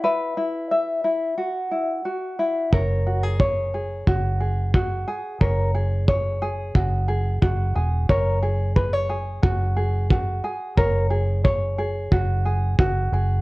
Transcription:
<<
  \new Staff \with { instrumentName = "Ukulele" } { \time 4/4 \key fis \mixolydian \tempo 4 = 90 <e' fis' b' e''>8 e'8 e''8 e'8 fis'8 e'8 fis'8 e'8 | <ais' cis''>8 fis'16 gis'16 cis''8 gis'8 fis'8 gis'8 fis'8 gis'8 | <ais' cis''>8 gis'8 cis''8 gis'8 fis'8 gis'8 fis'8 gis'8 | <ais' cis''>8 gis'8 b'16 cis''16 gis'8 fis'8 gis'8 fis'8 gis'8 |
<ais' cis''>8 gis'8 cis''8 gis'8 fis'8 gis'8 fis'8 gis'8 | }
  \new Staff \with { instrumentName = "Fingered electric bass" } { \clef bass \time 4/4 \key fis \mixolydian r1 | fis,,2 fis,,4. r8 | fis,,2 fis,,4 fis,,8 e,,8 | fis,,2 fis,,4. r8 |
fis,,2 fis,,4 fis,,8 fis,,8 | }
  \new DrumStaff \with { instrumentName = "Drums" } \drummode { \time 4/4 r4 r4 r4 r4 | bd4 bd4 bd4 bd4 | bd4 bd4 bd4 bd4 | bd4 bd4 bd4 bd4 |
bd4 bd4 bd4 bd4 | }
>>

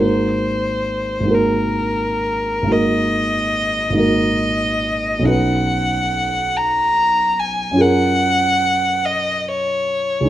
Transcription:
<<
  \new Staff \with { instrumentName = "Violin" } { \time 12/8 \key gis \dorian \tempo 4. = 47 bis'4. ais'4. dis''4. dis''4. | fis''4. ais''4 gis''8 fis''4. dis''8 cis''4 | }
  \new Staff \with { instrumentName = "Grand piano" } { \time 12/8 \key gis \dorian <gis,, ais dis' fis' ais'>4. <gis,, ais dis' fis' ais'>4. <gis,, ais dis' fis' ais'>4. <gis,, ais dis' fis' ais'>4. | <b,, cis' dis' fis' b'>2. <fis, cis' eis' gis' ais'>2. | }
>>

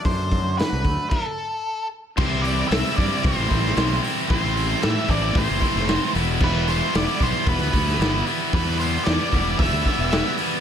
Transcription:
<<
  \new Staff \with { instrumentName = "Lead electric guitar" } { \time 4/4 \key e \minor \tempo 4 = 113 c''4 b'4 a'4. r8 | c''8 d''8 e''8 d''8 c''4. r8 | c''4 e''8 d''8 c''4. r8 | b'8 c''8 d''8 c''8 b'4. r8 |
b'8 c''8 d''4 e''4. r8 | }
  \new Staff \with { instrumentName = "Distorted electric guitar" } { \time 4/4 \key e \minor r1 | <c g c' e'>8 <g c' e'>8 <c g c' e'>8 <g c' e'>8 <c g c' e'>8 <c g c' e'>8 <c g c' e'>8 <g c' e'>8 | <a, e a c' e'>8 <a c' e'>8 <a, e a c' e'>8 <a c' e'>8 <e a c' e'>8 <a, e a c' e'>8 <e a c' e'>8 <e g b e'>8 | <e g b e'>8 <g b e'>8 <e g b e'>8 <g b e'>8 <e g b e'>8 <e g b e'>8 <e g b e'>8 <g b e'>8 |
<e g b e'>8 <g b e'>8 <e g b e'>8 <g b e'>8 <e g b e'>8 <e g b e'>8 <e g b e'>8 <g b e'>8 | }
  \new Staff \with { instrumentName = "Distorted electric guitar" } { \time 4/4 \key e \minor r1 | <c e g c' e'>8 <g c' e'>8 <c e g c' e'>8 <g c' e'>8 <e g c' e'>8 <c e g c' e'>8 <e g c' e'>8 <g c' e'>8 | <a, e a c' e'>8 <a c' e'>8 <a, e a c' e'>8 <a c' e'>8 <e a c' e'>8 <a, e a c' e'>8 <e a c' e'>8 <e g b e'>8 | <e g b e'>8 <g b e'>8 <e g b e'>8 <g b e'>8 <e g b e'>8 <e g b e'>8 <e g b e'>8 <g b e'>8 |
<e g b e'>8 <g b e'>8 <e g b e'>8 <g b e'>8 <e g b e'>8 <e g b e'>8 <e g b e'>8 <g b e'>8 | }
  \new Staff \with { instrumentName = "Clean electric guitar" } { \clef bass \time 4/4 \key e \minor <d fis a d'>8 fis8 d8 a8 r2 | r1 | r1 | r1 |
r1 | }
  \new Staff \with { instrumentName = "Fingered electric bass" } { \clef bass \time 4/4 \key e \minor fis,4~ fis,16 c,16 d,16 r2 r16 | c,4 c,16 r16 g,16 r16 c,16 a,,16 a,,8 b,,8 r8 | a,,4 a,16 r16 a,,8 a,,16 fis,,16 r16 f,,8 r16 e,,8~ | e,,4 e,,16 r16 b,,16 r16 e,,16 d,16 d,8 g,,8 r8 |
e,4 e,16 r16 e,,8 e,,16 d,16 r16 e,,8 r8. | }
  \new DrumStaff \with { instrumentName = "Drums" } \drummode { \time 4/4 <hho bd>8 <hho bd>8 <hho sn>8 <hho bd>8 <cymc bd>4 r4 | <cymc bd>8 hho8 <hho sn>8 <hho bd>8 <hho bd>8 <hho bd>16 sn16 <hho sn>8 hho8 | <hho bd>8 hho8 <hho sn>8 <hho bd>8 <hho bd>8 <hho bd>16 sn16 <hho sn>8 hho8 | <cymc bd>8 hho8 <hho sn>8 <hho bd>8 <hho bd>8 <hho bd>16 sn16 <hho sn>8 hho8 |
<hho bd>8 hho8 <hho sn>8 <hho bd>8 <hho bd>8 <hho bd>8 <hho sn>8 hho8 | }
>>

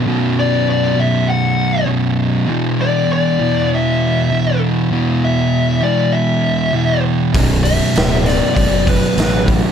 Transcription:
<<
  \new Staff \with { instrumentName = "Lead electric guitar" } { \time 4/4 \key b \minor \tempo 4 = 99 r8 d''8 d''8 e''8 fis''4 r4 | r8 d''8 d''4 e''4. r8 | r8 e''4 d''8 e''4. r8 | r8 e''4 d''8 d''8 b'4 r8 | }
  \new Staff \with { instrumentName = "Distorted electric guitar" } { \clef bass \time 4/4 \key b \minor <b,, fis, b,>1 | <e, b, e>1 | <e, b, e>1 | <b,, fis, b,>1 | }
  \new Staff \with { instrumentName = "Distorted electric guitar" } { \clef bass \time 4/4 \key b \minor <b,, fis, b,>4. <b,, fis, b,>4. <b,, fis, b,>4 | <e, b, e>4. <e, b, e>4. <e, b, e>4 | <e, b, e>4. <e, b, e>4. <e, b, e>4 | <b,, fis, b,>4. <b,, fis, b,>4. <b,, fis, b,>4 | }
  \new Staff \with { instrumentName = "Fingered electric bass" } { \clef bass \time 4/4 \key b \minor r1 | r1 | r1 | b,,,4 d,,4 fis,,4 a,,4 | }
  \new DrumStaff \with { instrumentName = "Drums" } \drummode { \time 4/4 r4 r4 r4 r4 | r4 r4 r4 r4 | r4 r4 r4 r4 | <hho bd>8 hho8 <hho sn>8 <hho sn>8 <hho bd>8 <hho bd>8 <hho sn>8 <hho bd>8 | }
>>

